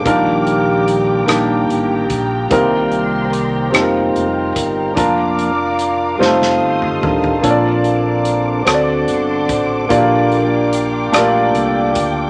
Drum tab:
HH |x-x-x-x-x-x-|x-x-x-x-x-x-|x-x-x-------|x-x-x-x-x-x-|
SD |------r-----|------r-----|------oo----|------r-----|
T2 |------------|------------|---------o--|------------|
FT |------------|------------|----------oo|------------|
BD |o---------o-|o---------o-|o-----------|o---------o-|

HH |x-x-x-x-x-x-|
SD |------r-----|
T2 |------------|
FT |------------|
BD |o---------o-|